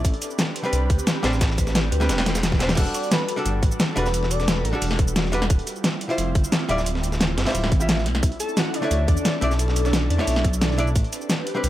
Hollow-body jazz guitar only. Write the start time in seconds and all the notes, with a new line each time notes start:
0.63 G3 C4 D4 B4
1.23 G3 C4 D4 C5
2.00 G3 C4 D4 B4
2.59 G3 C4 D4 C5
2.75 G3 D4 F#4
2.79 A4
3.36 G3 D4 F#4 A4
3.96 G3 D4 F#4 B4
4.73 G3 D4 F#4 A4
5.32 G3 D4 F#4 B4
6.09 G3 E4 F4 C5
6.68 G3 E4 F4 D5
7.45 G3 E4 F4 C5
7.80 G3 E4 F4 E5
8.82 A3 D4 E4 C#5
9.41 A3 D4 E4 D5
10.18 A3 D4 E4 C#5
10.78 A3 D4 E4 D5
11.55 G3 C4 D4 B4